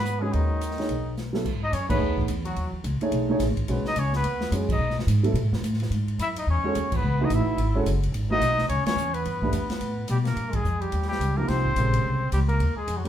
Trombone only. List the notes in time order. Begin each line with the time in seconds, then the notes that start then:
Already playing: B3
0.20 G#3
0.32 D#3
1.63 D#4
1.73 C#4
1.89 B3
2.45 F#3
3.87 D#4
3.99 C#4
4.15 B3
4.72 D#4
6.20 E4
6.38 D#4
6.50 C#4
6.96 B3
7.24 D#4
7.35 E4
8.31 D#4
8.68 C#4
8.87 C#4
9.14 B3
10.10 G3
10.24 A#3
10.52 G#3
10.81 G3
11.08 G3
11.38 A#3
11.48 C4
12.33 G3
12.48 A#3
12.77 G#3
12.98 F#3
13.05 G3